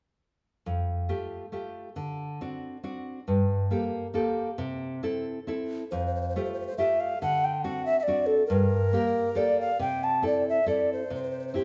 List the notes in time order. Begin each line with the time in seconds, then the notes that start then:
0.66 F2
1.09 A3 F4 G4
1.52 A3 F4 G4
1.96 D3
2.41 C4 D4 F#4
2.84 C4 D4 F#4
3.28 G2
3.71 A#3 G4 A4
4.14 A#3 G4 A4
4.58 C3
5.03 C4 E4 A4
5.47 C4 E4 A4
5.91 F2 C5
5.99 C5
6.07 C5
6.15 C5
6.22 C5
6.29 C5
6.36 A3 F4 G4 C5
6.44 C5
6.53 C5
6.60 C5
6.67 C5
6.78 A3 F4 G4 E5
7.00 F5
7.22 D3 F#5
7.45 G5
7.64 C4 D4 F#4 F#5
7.86 E5
8.00 D5 E5
8.07 C4 D4 F#4
8.26 A4
8.46 G2 A#4
8.93 A#3 G4 A#4
9.35 A#3 G4 A4 D5
9.61 F5
9.79 C3 G5
10.04 A5
10.22 C4 E4 A4
10.26 D5
10.49 E5
10.66 C4 E4 A4 D5
10.93 C5
11.10 C3
11.15 C5
11.23 C5
11.31 C5
11.40 C5
11.48 C5
11.54 C4 E4 G4 C5